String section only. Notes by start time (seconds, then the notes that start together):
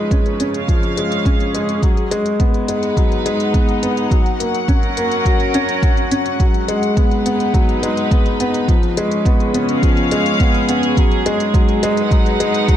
Already playing: C#3 C#4 D#4 B4
0.57 G#4 F5
1.83 G#3
2.61 D#4
2.68 B4 F#5
4.12 F#3
4.33 C#4
4.75 A#4
6.40 G#3
6.92 B4
7.06 D#4
8.69 C#3
8.98 C#4
9.72 G#4 F5
10.98 G#3
11.34 D#4
11.68 B4
12.00 F#5